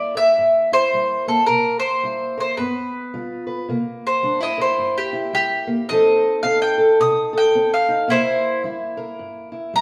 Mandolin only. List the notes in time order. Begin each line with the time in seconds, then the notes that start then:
Already playing: D5
0.17 E5
0.73 C5
1.28 A4
1.46 A#4
1.80 C5
2.40 C5
2.57 B4
4.07 C5
4.43 D#5
4.62 C5
4.98 G4
5.35 G4
5.89 D#5
6.43 F5
6.62 G5
7.01 D#6
7.38 G5
7.74 F5
8.10 E4 C5
9.76 A#5